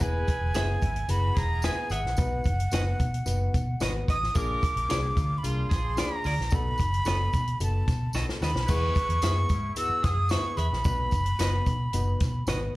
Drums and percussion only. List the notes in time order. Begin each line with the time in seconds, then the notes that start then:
0.00 kick, closed hi-hat, tambourine
0.28 kick, closed hi-hat, tambourine
0.54 snare, closed hi-hat, tambourine
0.82 kick, closed hi-hat, tambourine
0.96 closed hi-hat
1.09 closed hi-hat, tambourine
1.36 kick, snare, closed hi-hat, tambourine
1.62 snare, closed hi-hat, tambourine
1.90 closed hi-hat, tambourine
2.06 snare
2.17 kick, closed hi-hat, tambourine
2.44 kick, closed hi-hat, tambourine
2.60 closed hi-hat
2.71 snare, closed hi-hat, tambourine
3.00 kick, closed hi-hat, tambourine
3.14 closed hi-hat
3.26 closed hi-hat, tambourine
3.54 kick, closed hi-hat, tambourine
3.80 snare, closed hi-hat, tambourine
4.08 kick, closed hi-hat, tambourine
4.23 snare
4.35 kick, closed hi-hat, tambourine
4.62 kick, closed hi-hat, tambourine
4.77 closed hi-hat
4.90 snare, closed hi-hat, tambourine
5.17 kick, closed hi-hat, tambourine
5.44 closed hi-hat, tambourine
5.71 kick, snare, closed hi-hat, tambourine
5.97 snare, closed hi-hat, tambourine
6.24 open hi-hat, tambourine
6.41 snare
6.51 kick, closed hi-hat, tambourine
6.78 kick, closed hi-hat, tambourine
6.94 closed hi-hat
7.05 snare, closed hi-hat, tambourine
7.33 kick, closed hi-hat, tambourine
7.47 closed hi-hat
7.60 closed hi-hat, tambourine
7.88 kick, snare, closed hi-hat, tambourine
8.13 snare, tambourine
8.29 snare
8.42 snare, tambourine
8.56 snare
8.68 kick, crash, tambourine
8.95 kick, closed hi-hat, tambourine
9.10 closed hi-hat
9.22 snare, closed hi-hat, tambourine
9.49 kick, closed hi-hat, tambourine
9.76 closed hi-hat, tambourine
10.04 kick, snare, closed hi-hat, tambourine
10.29 snare, closed hi-hat, tambourine
10.57 closed hi-hat, tambourine
10.73 snare
10.84 kick, closed hi-hat, tambourine
11.11 kick, closed hi-hat, tambourine
11.26 closed hi-hat
11.39 snare, closed hi-hat, tambourine
11.66 kick, closed hi-hat, tambourine
11.93 closed hi-hat, tambourine
12.20 kick, snare, closed hi-hat, tambourine
12.47 snare, closed hi-hat, tambourine